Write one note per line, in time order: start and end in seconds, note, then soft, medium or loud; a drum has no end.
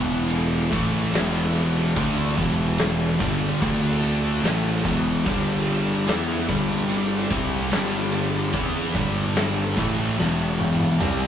0.00 0.68 E1 loud
0.00 0.70 E2 medium
0.00 0.70 B2 loud
0.00 0.70 E3 loud
0.30 ride loud
0.70 1.11 A1 medium
0.70 1.11 A2 medium
0.70 1.12 E3 medium
0.70 1.12 A3 loud
0.70 kick loud
0.70 ride medium
1.12 1.92 E1 medium
1.12 1.94 E2 loud
1.12 1.94 B2 medium
1.12 1.95 E3 loud
1.12 snare loud
1.12 ride loud
1.55 ride medium
1.95 2.35 D2 loud
1.95 2.36 D3 medium
1.95 2.36 A3 loud
1.95 2.36 D4 loud
1.95 kick loud
1.95 ride loud
2.37 3.16 E1 loud
2.37 3.18 E2 medium
2.37 3.18 B2 medium
2.37 3.19 E3 loud
2.37 kick loud
2.37 ride medium
2.78 snare loud
2.78 ride loud
3.20 3.59 G1 loud
3.20 3.60 G2 loud
3.20 3.60 D3 loud
3.20 3.60 G3 loud
3.20 kick loud
3.20 ride medium
3.62 4.40 D2 loud
3.62 4.42 D3 loud
3.62 4.42 A3 loud
3.62 4.43 D4 loud
3.62 kick loud
3.62 ride loud
4.03 ride medium
4.42 4.81 A1 medium
4.42 4.83 A2 medium
4.42 4.83 E3 loud
4.42 4.83 A3 loud
4.42 snare loud
4.42 ride loud
4.84 5.23 E1 loud
4.84 5.24 E2 medium
4.84 5.24 B2 loud
4.84 5.25 E3 loud
4.84 kick loud
4.84 ride medium
5.25 6.05 G1 loud
5.25 6.06 G2 loud
5.25 6.06 D3 loud
5.25 6.06 G3 loud
5.25 kick loud
5.25 ride loud
5.67 ride medium
6.06 6.46 E2 medium
6.06 6.47 E3 loud
6.06 6.47 B3 loud
6.06 6.47 E4 loud
6.06 snare loud
6.06 ride loud
6.48 7.27 G1 loud
6.48 7.29 G2 loud
6.48 7.30 D3 loud
6.48 7.29 G3 loud
6.48 kick loud
6.48 ride medium
6.89 ride loud
7.30 7.69 C2 loud
7.30 7.70 C3 medium
7.30 7.71 G3 loud
7.30 7.71 C4 loud
7.30 kick loud
7.30 ride medium
7.71 8.51 G1 loud
7.71 8.53 G2 loud
7.71 8.53 D3 loud
7.71 8.53 G3 loud
7.71 snare loud
7.71 ride loud
8.12 ride medium
8.53 8.92 E2 loud
8.53 8.94 E3 loud
8.53 8.94 B3 loud
8.53 8.95 E4 loud
8.53 kick loud
8.53 ride loud
8.94 9.74 G1 medium
8.94 9.76 G2 medium
8.94 9.76 D3 medium
8.94 9.77 G3 loud
8.94 kick loud
8.94 ride medium
9.35 snare loud
9.35 ride loud
9.76 10.16 A1 medium
9.76 10.17 A2 loud
9.76 10.17 E3 loud
9.76 10.18 A3 loud
9.76 kick loud
9.76 ride medium
10.17 10.97 E1 loud
10.17 10.99 E2 loud
10.17 10.99 B2 loud
10.17 11.00 E3 loud
10.17 snare medium
10.59 high tom medium
10.79 high tom medium
11.00 11.27 C2 medium
11.00 11.27 C3 loud
11.00 11.27 G3 loud
11.00 11.27 C4 loud
11.00 mid tom loud